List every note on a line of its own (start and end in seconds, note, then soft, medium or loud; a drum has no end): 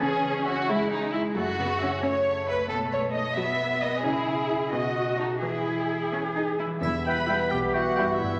0.00 1.38 C#3 medium
0.00 0.69 C#4 medium
0.00 0.55 C#4 medium
0.00 0.46 E4 soft
0.00 0.67 G#4 soft
0.00 0.45 G#4 medium
0.24 1.38 G#3 soft
0.45 1.80 E4 soft
0.45 0.68 F#4 medium
0.45 0.63 E5 medium
0.68 1.35 G#3 medium
0.68 1.23 G#3 medium
0.68 0.91 E4 medium
0.68 1.12 G#4 soft
0.91 1.13 D#4 medium
0.91 2.24 C#5 soft
1.13 1.21 E4 medium
1.13 1.38 G#4 soft
1.13 1.31 E5 medium
1.35 2.71 F#2 medium
1.35 1.89 F#3 medium
1.35 1.44 A3 medium
1.35 2.02 F#4 medium
1.58 2.71 C#3 soft
1.58 1.67 B3 medium
1.81 1.89 C#4 medium
1.81 2.72 E4 soft
1.81 1.97 E5 medium
2.03 3.35 A3 medium
2.03 2.56 C#4 medium
2.03 2.47 A4 soft
2.03 2.47 C#5 medium
2.25 2.72 C#5 soft
2.48 4.07 A4 soft
2.48 2.70 B4 medium
2.48 2.64 E5 medium
2.69 4.07 B2 medium
2.69 3.23 B3 medium
2.69 2.77 A4 medium
2.92 4.07 F#3 soft
2.92 3.00 C#5 medium
3.14 4.07 D#4 soft
3.14 3.36 D#5 medium
3.14 3.32 D#5 soft
3.36 3.91 F#3 medium
3.36 4.03 B3 medium
3.36 3.81 F#4 soft
3.36 3.82 E5 medium
3.60 4.07 B4 soft
3.82 4.06 F#4 soft
3.82 4.05 D#5 medium
3.82 3.99 D#5 soft
4.04 4.75 C#3 soft
4.04 4.59 C#4 medium
4.04 4.72 E4 medium
4.04 4.71 G#4 medium
4.27 4.75 C#4 soft
4.50 4.75 E4 soft
4.50 4.75 G#4 soft
4.50 4.68 E5 soft
4.72 5.44 B2 soft
4.72 5.29 B3 soft
4.72 5.42 F#4 soft
4.72 5.19 D#5 medium
4.96 5.45 A3 soft
5.19 5.28 D#4 soft
5.19 6.12 B4 soft
5.19 5.38 A5 soft
5.42 6.65 E3 soft
5.42 5.99 E3 soft
5.42 6.12 E4 soft
5.42 6.46 G#4 soft
5.66 6.85 G#3 soft
5.90 6.74 E4 soft
5.90 6.08 G#5 soft
6.13 6.21 C#4 soft
6.13 6.59 B4 soft
6.36 6.44 D#4 soft
6.36 6.85 G#4 soft
6.59 6.68 E4 soft
6.59 6.78 B4 soft
6.59 6.77 G#5 soft
6.66 8.13 E3 soft
6.70 8.05 G3 soft
6.75 8.10 E4 soft
6.79 7.37 E1 medium
6.79 7.37 E2 medium
6.79 8.40 G3 soft
6.79 8.40 B3 soft
6.79 8.14 B4 soft
6.79 7.04 E5 medium
6.83 6.94 E4 medium
6.83 triangle soft
7.06 7.15 E4 soft
7.06 7.53 B4 medium
7.06 7.14 G5 soft
7.06 7.51 B5 medium
7.28 7.46 G3 soft
7.28 7.46 E4 soft
7.28 7.37 E4 soft
7.28 7.46 E5 soft
7.28 7.36 G5 soft
7.28 7.46 B5 soft
7.50 8.05 B1 medium
7.50 8.05 B2 soft
7.50 7.75 G4 medium
7.50 7.58 G5 medium
7.73 7.83 E4 soft
7.73 8.21 F#4 medium
7.73 8.18 F#5 soft
7.73 7.81 G5 soft
7.96 8.14 G3 soft
7.96 8.14 E4 soft
7.96 8.06 E4 soft
7.96 8.14 E5 soft
7.96 8.04 G5 soft
7.96 8.14 B5 soft
8.02 8.40 G2 soft
8.06 8.40 G3 soft
8.11 8.40 E4 soft
8.15 8.40 G2 medium
8.15 8.40 E4 medium
8.15 8.40 B4 soft
8.15 8.40 E5 soft
8.20 8.40 G1 medium